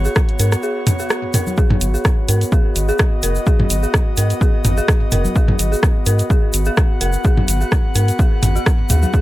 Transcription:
0.00 9.21 B3 medium
0.00 9.21 F#4 medium
0.00 2.56 C#5 medium
0.05 0.07 G#4 medium
0.05 shaker medium
0.16 kick loud
0.16 cross-stick loud
0.16 shaker soft
0.29 closed hi-hat soft
0.39 0.55 G#2 loud
0.39 0.44 A#4 medium
0.39 closed hi-hat medium
0.39 shaker medium
0.52 cross-stick medium
0.52 closed hi-hat soft
0.52 shaker medium
0.63 0.70 G#4 medium
0.63 shaker soft
0.87 closed hi-hat medium
0.87 mid tom medium
0.87 shaker medium
0.99 1.02 G#4 medium
0.99 shaker medium
1.10 cross-stick medium
1.10 shaker soft
1.34 1.38 A#4 medium
1.34 closed hi-hat medium
1.34 mid tom medium
1.34 shaker medium
1.47 high conga soft
1.47 shaker medium
1.57 1.64 G#4 medium
1.57 kick loud
1.57 shaker soft
1.70 mid tom medium
1.70 high conga medium
1.81 1.97 G#1 loud
1.81 closed hi-hat loud
1.81 shaker medium
1.94 1.96 G#4 medium
1.94 shaker medium
2.05 kick loud
2.05 cross-stick medium
2.05 shaker soft
2.29 2.44 G#2 loud
2.29 2.33 A#4 medium
2.29 closed hi-hat medium
2.29 shaker medium
2.41 closed hi-hat soft
2.41 shaker medium
2.52 2.59 G#4 medium
2.52 6.34 D#5 medium
2.52 kick loud
2.52 shaker soft
2.76 2.92 G#1 loud
2.76 closed hi-hat medium
2.76 shaker medium
2.89 2.94 G#4 loud
2.89 shaker soft
2.99 kick loud
2.99 cross-stick loud
2.99 shaker soft
3.23 3.39 F#1 loud
3.23 3.27 A#4 medium
3.23 closed hi-hat medium
3.23 shaker medium
3.35 shaker medium
3.46 3.53 G#4 medium
3.46 kick loud
3.46 shaker soft
3.60 mid tom medium
3.60 high conga medium
3.70 3.86 G#1 loud
3.70 closed hi-hat loud
3.70 shaker medium
3.83 3.85 G#4 medium
3.83 shaker medium
3.94 kick loud
3.94 cross-stick loud
3.94 shaker soft
4.17 4.33 G#2 loud
4.17 4.22 A#4 medium
4.17 closed hi-hat medium
4.17 shaker medium
4.30 closed hi-hat soft
4.30 shaker medium
4.41 4.48 G#4 medium
4.41 kick loud
4.41 shaker soft
4.65 4.81 G#1 loud
4.65 closed hi-hat medium
4.65 mid tom loud
4.65 shaker medium
4.78 4.83 G#4 loud
4.78 shaker medium
4.88 kick loud
4.88 cross-stick loud
4.88 shaker soft
5.11 5.28 F#1 loud
5.11 5.16 A#4 medium
5.11 closed hi-hat medium
5.11 mid tom loud
5.11 shaker loud
5.25 high conga medium
5.25 shaker medium
5.36 5.42 G#4 medium
5.36 kick loud
5.36 shaker soft
5.48 mid tom medium
5.48 high conga medium
5.59 5.75 G#1 medium
5.59 closed hi-hat loud
5.59 shaker medium
5.72 5.74 G#4 medium
5.72 shaker medium
5.83 kick loud
5.83 cross-stick medium
5.83 shaker soft
6.06 6.22 G#2 loud
6.06 6.11 A#4 medium
6.06 closed hi-hat medium
6.06 shaker medium
6.19 closed hi-hat soft
6.19 shaker medium
6.30 6.37 G#4 medium
6.30 9.21 F#5 medium
6.30 kick loud
6.30 shaker soft
6.53 6.70 G#1 loud
6.53 closed hi-hat medium
6.53 shaker medium
6.65 6.72 G#4 loud
6.65 shaker medium
6.77 kick loud
6.77 cross-stick medium
6.77 shaker soft
7.01 7.17 F#1 loud
7.01 7.05 A#4 medium
7.01 closed hi-hat medium
7.01 shaker loud
7.13 shaker medium
7.24 7.31 G#4 medium
7.24 kick loud
7.24 shaker soft
7.37 mid tom medium
7.37 high conga medium
7.48 7.64 G#1 loud
7.48 closed hi-hat loud
7.48 shaker medium
7.61 7.63 G#4 medium
7.61 shaker soft
7.72 kick loud
7.72 cross-stick medium
7.72 shaker soft
7.95 8.11 G#2 loud
7.95 8.00 A#4 medium
7.95 closed hi-hat medium
7.95 shaker medium
8.08 closed hi-hat soft
8.08 shaker medium
8.19 8.26 G#4 medium
8.19 kick loud
8.19 shaker soft
8.43 8.59 G#1 medium
8.43 closed hi-hat medium
8.43 mid tom medium
8.43 shaker medium
8.56 8.59 F#4 medium
8.56 shaker medium
8.66 kick loud
8.66 cross-stick medium
8.66 shaker soft
8.90 9.06 D#2 medium
8.90 8.96 G#4 medium
8.90 closed hi-hat medium
8.90 mid tom medium
8.90 shaker loud
9.03 9.08 G#4 medium
9.03 high conga medium
9.03 shaker medium
9.13 9.20 G#4 medium
9.13 kick loud
9.13 shaker soft

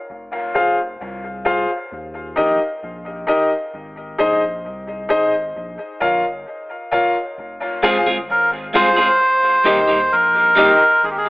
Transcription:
0.10 0.96 F1 loud
0.54 0.77 F4 medium
0.54 0.77 G#4 medium
0.54 0.77 C5 medium
0.54 0.77 F5 medium
1.01 1.66 C2 medium
1.45 1.67 F4 medium
1.45 1.68 G#4 medium
1.45 1.68 C5 medium
1.45 1.68 F5 medium
1.92 2.35 D#2 loud
2.36 2.59 A#1 medium
2.36 2.58 D#4 medium
2.36 2.59 G4 medium
2.36 2.59 A#4 medium
2.36 2.59 D#5 medium
2.83 3.26 A#1 medium
3.27 3.49 D#4 medium
3.27 3.50 G4 medium
3.27 3.50 A#4 medium
3.27 3.50 D#5 medium
3.74 4.17 G#1 loud
4.18 4.67 A#1 medium
4.18 4.41 D#4 medium
4.18 4.41 G#4 medium
4.18 4.41 C5 medium
4.18 4.41 D#5 medium
4.65 5.08 C2 medium
5.09 5.53 G#1 medium
5.09 5.32 D#4 medium
5.09 5.32 G#4 medium
5.09 5.32 C5 medium
5.09 5.32 D#5 loud
5.56 5.78 A#1 medium
6.00 6.23 A#1 medium
6.00 6.23 F4 medium
6.00 6.23 A#4 medium
6.00 6.23 C#5 medium
6.00 6.23 F5 medium
6.25 6.45 G1 medium
6.92 7.14 F4 medium
6.92 7.14 A#4 medium
6.92 7.14 C#5 medium
6.92 7.15 F5 medium
7.38 8.04 F1 loud
7.83 7.97 G#3 medium
7.83 7.97 C4 medium
7.83 8.05 F4 medium
7.83 7.97 F4 medium
7.83 8.05 G#4 medium
7.83 7.97 G#4 loud
7.83 8.06 C5 medium
7.83 8.06 F5 loud
8.06 8.28 G1 medium
8.06 8.17 G#3 soft
8.06 8.17 C4 medium
8.06 8.17 F4 medium
8.06 8.16 G#4 medium
8.30 8.72 G#1 loud
8.30 8.51 A#4 medium
8.73 8.97 C2 loud
8.73 8.87 G#3 medium
8.73 8.88 C4 medium
8.73 8.96 F4 medium
8.73 8.88 F4 medium
8.73 8.97 G#4 medium
8.73 8.88 G#4 medium
8.73 8.97 C5 medium
8.73 10.15 C5 loud
8.73 8.97 F5 loud
8.96 9.08 G#3 soft
8.96 9.08 C4 medium
8.96 9.07 F4 medium
8.96 9.07 G#4 medium
8.96 9.07 C5 soft
8.96 9.07 F5 soft
9.64 10.09 D#2 loud
9.64 9.78 G3 medium
9.64 9.79 A#3 medium
9.64 9.79 D#4 medium
9.64 9.88 D#4 medium
9.64 9.88 G4 medium
9.64 9.79 G4 medium
9.64 9.88 A#4 medium
9.64 9.88 D#5 loud
9.87 9.99 G3 medium
9.87 9.99 A#3 medium
9.87 9.98 D#4 medium
9.87 9.98 G4 medium
10.12 10.55 A#1 loud
10.12 11.05 A#4 loud
10.55 10.69 G3 medium
10.55 10.70 A#3 medium
10.55 10.70 D#4 medium
10.55 10.79 D#4 medium
10.55 10.70 G4 medium
10.55 10.79 G4 medium
10.55 10.79 A#4 medium
10.55 10.79 D#5 loud
11.03 11.29 G#1 loud
11.03 11.10 G#4 medium
11.11 11.17 G4 medium
11.18 11.29 G#4 loud

